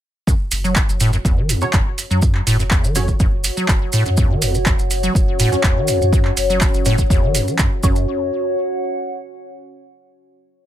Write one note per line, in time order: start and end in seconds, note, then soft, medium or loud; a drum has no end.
0.27 0.34 F#2 medium
0.27 7.83 F#4 medium
0.27 kick loud
0.27 maracas medium
0.51 0.82 F#1 medium
0.51 open hi-hat loud
0.51 maracas medium
0.64 0.74 F#3 medium
0.64 maracas soft
0.76 kick loud
0.76 clap loud
0.76 maracas soft
0.89 1.19 F#1 medium
0.89 maracas soft
0.94 7.84 C#5 medium
1.00 1.11 A2 loud
1.00 open hi-hat medium
1.00 maracas medium
1.13 1.17 F#2 medium
1.13 maracas soft
1.25 1.56 F#1 medium
1.25 1.39 E2 medium
1.25 kick loud
1.25 maracas medium
1.37 1.51 E3 medium
1.49 1.63 E2 loud
1.49 open hi-hat loud
1.49 maracas medium
1.61 1.66 F#3 loud
1.61 1.73 F#3 medium
1.61 1.73 C#4 medium
1.61 1.73 C#5 medium
1.61 maracas soft
1.73 1.82 F#1 medium
1.73 1.81 F#2 medium
1.73 kick loud
1.73 clap loud
1.73 maracas soft
1.98 open hi-hat medium
1.98 maracas medium
2.11 2.41 F#2 loud
2.11 2.20 F#3 medium
2.11 maracas soft
2.22 kick loud
2.22 maracas soft
2.28 7.84 F#5 medium
2.35 clap soft
2.47 2.78 F#1 loud
2.47 2.57 A2 loud
2.47 open hi-hat loud
2.47 maracas medium
2.59 2.63 F#2 medium
2.59 maracas soft
2.71 2.85 E2 medium
2.71 kick loud
2.71 clap loud
2.71 maracas soft
2.84 3.14 F#1 medium
2.84 2.97 E3 medium
2.84 maracas soft
2.95 3.10 E2 medium
2.95 3.07 F#3 medium
2.95 3.07 C#4 medium
2.95 3.07 C#5 medium
2.95 open hi-hat medium
2.95 maracas medium
3.08 3.12 F#3 medium
3.08 kick medium
3.08 maracas soft
3.20 3.51 F#1 medium
3.20 3.27 F#2 medium
3.20 kick loud
3.20 maracas soft
3.44 open hi-hat loud
3.44 maracas medium
3.57 3.67 F#3 medium
3.57 maracas soft
3.68 3.77 F#1 medium
3.68 kick loud
3.68 clap loud
3.68 maracas soft
3.93 4.04 A2 loud
3.93 open hi-hat medium
3.93 maracas medium
4.06 4.10 F#2 medium
4.06 4.36 F#2 medium
4.06 maracas soft
4.17 4.32 E2 medium
4.17 7.80 C#4 medium
4.17 7.80 F#4 medium
4.17 7.80 C#5 medium
4.17 kick loud
4.17 maracas medium
4.30 4.43 E3 medium
4.42 4.73 F#1 medium
4.42 4.56 E2 loud
4.42 open hi-hat loud
4.42 maracas medium
4.54 4.58 F#3 loud
4.54 maracas soft
4.66 4.73 F#2 medium
4.66 kick loud
4.66 clap loud
4.66 maracas medium
4.79 5.09 F#1 medium
4.79 maracas soft
4.91 open hi-hat medium
4.91 maracas loud
5.03 5.13 F#3 medium
5.03 maracas soft
5.15 5.46 F#1 medium
5.15 kick loud
5.15 maracas medium
5.39 5.50 A2 loud
5.39 open hi-hat loud
5.39 maracas medium
5.52 5.56 F#2 medium
5.52 5.63 F#3 medium
5.52 5.63 C#4 medium
5.52 5.63 C#5 medium
5.52 maracas soft
5.63 5.73 F#1 medium
5.63 5.78 E2 medium
5.63 kick loud
5.63 clap loud
5.63 maracas medium
5.76 5.90 E3 medium
5.88 6.02 E2 loud
5.88 open hi-hat medium
5.88 maracas loud
6.01 6.31 F#2 loud
6.01 6.05 F#3 loud
6.01 maracas soft
6.13 6.20 F#2 medium
6.13 kick loud
6.13 maracas soft
6.25 clap soft
6.37 6.68 F#1 loud
6.37 open hi-hat loud
6.37 maracas medium
6.50 6.59 F#3 medium
6.50 maracas soft
6.61 kick loud
6.61 clap loud
6.61 maracas medium
6.74 7.04 F#1 medium
6.74 maracas soft
6.85 6.96 A2 loud
6.85 6.98 F#3 medium
6.85 6.98 C#4 medium
6.85 6.98 C#5 medium
6.85 open hi-hat medium
6.85 maracas medium
6.98 7.02 F#2 medium
6.98 kick medium
6.98 maracas soft
7.10 7.41 F#1 medium
7.10 7.24 E2 medium
7.10 kick loud
7.10 maracas soft
7.23 7.36 E3 medium
7.35 7.49 F#2 medium
7.35 open hi-hat loud
7.35 maracas loud
7.47 7.60 F#3 medium
7.47 maracas soft
7.58 7.63 F#2 medium
7.58 7.68 F#2 medium
7.58 kick loud
7.58 clap loud
7.58 maracas medium
7.83 8.06 F#1 loud
7.83 8.06 F#2 medium
7.83 8.02 F#3 medium
7.83 8.02 C#4 medium
7.83 9.75 F#4 medium
7.83 8.02 C#5 medium
7.83 kick loud
7.83 maracas loud
7.91 9.75 C#5 medium
7.96 maracas soft
8.23 9.99 F#5 medium